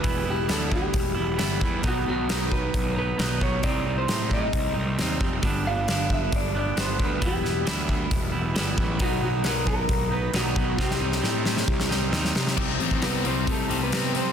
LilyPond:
<<
  \new Staff \with { instrumentName = "Clean electric guitar" } { \time 4/4 \key c \major \tempo 4 = 134 b'8 g'8 a'8 g'2 r8 | fis'8 fis'4 b'4 b'4 cis''8 | d''8. c''8. ees''4 r4. | r8 f''4 e''8 d''8 d''8 c''8 b'8 |
g'4 r2. | fis'8 fis'8 bes'8 bes'4 b'8 fis'4 | g'2. r4 | r4 <b b'>8 <c' c''>8 <a a'>8. <b b'>8. <c' c''>8 | }
  \new Staff \with { instrumentName = "Clean electric guitar" } { \time 4/4 \key c \major <e g b e'>8 <g b e'>8 <e g b e'>4. <g b e'>8 <e g b e'>8 <g b e'>8 | <b, dis fis b dis'>8 <fis b dis'>8 <dis fis b dis'>4. <fis b dis'>8 <b, dis fis b dis'>8 <fis b dis'>8 | <c g c' ees'>8 <g c' ees'>8 <c g c' ees'>4. <g c' ees'>8 <c g c' ees'>8 <g c' ees'>8 | <g, d g b d'>8 <g b d'>8 <d g b d'>4. <g b d'>8 <g, d g b d'>8 <g b d'>8 |
<e g b e'>8 <g b e'>8 <e g b e'>4. <g b e'>8 <e g b e'>8 <g b e'>8 | <b, dis fis b dis'>8 <fis b dis'>8 <dis fis b dis'>4. <fis b dis'>8 <b, dis fis b dis'>8 <fis b dis'>8 | <c g c' ees'>8 <g c' ees'>8 <c g c' ees'>4. <g c' ees'>8 <c g c' ees'>8 <g c' ees'>8 | <c g c' ees'>8 <g c' ees'>8 <c g c' ees'>8 <c g c' ees'>8 <c g c' ees'>8 <c g ees'>8 <c g c' ees'>8 <g c' ees'>8 | }
  \new Staff \with { instrumentName = "Overdriven electric guitar" } { \clef bass \time 4/4 \key c \major r1 | r1 | r1 | r1 |
r1 | r1 | r1 | <c g c'>8 <c g c'>8 <c g c'>8 <c g c'>8 <c g c'>8 <c g c'>8 <c g c'>8 <c g c'>8 | }
  \new Staff \with { instrumentName = "Picked electric bass" } { \clef bass \time 4/4 \key c \major e,,8 e,,8 d,4 e,,8 e,,8 g,,8 e,8 | b,,8 b,,8 b,,4 b,,4 b,,8 b,,8 | c,8 c,8 a,4 c,8 c,8 ees,8 f,,8 | g,,8 g,,8 g,,4 g,,4 g,,8 d,8 |
e,,8 e,,8 d,4 e,,8 e,,8 g,,8 a,,8 | b,,8 b,,8 b,,4 b,,4 b,,8 b,,8 | c,8 c,8 a,4 c,8 c,8 ees,8 c8 | c,8 a,,8 c,8 c,8 c,8 c,8 c4 | }
  \new DrumStaff \with { instrumentName = "Drums" } \drummode { \time 4/4 <hho bd>4 <hho sn>8 bd8 <hho bd>4 <hho sn>8 bd8 | <hho bd>4 <hho sn>8 bd8 <hho bd>4 <hho sn>8 bd8 | <hho bd>4 <hho sn>8 bd8 <hho bd>4 <hho sn>8 bd8 | <hho bd>4 <hho sn>8 bd8 <hho bd>4 <hho sn>8 bd8 |
<hho bd>8 sn8 <hho sn>8 bd8 <hho bd>4 <hho sn>8 bd8 | <hho bd>4 <hho sn>8 bd8 <hho bd>4 <hho sn>8 bd8 | <bd sn>16 sn8 sn16 sn8 sn16 sn16 bd16 sn16 sn8 sn16 sn16 sn16 sn16 | <cymc bd>8 hho16 bd16 <hho sn>8 hho8 <hho bd>8 hho8 <hho sn>8 hho8 | }
>>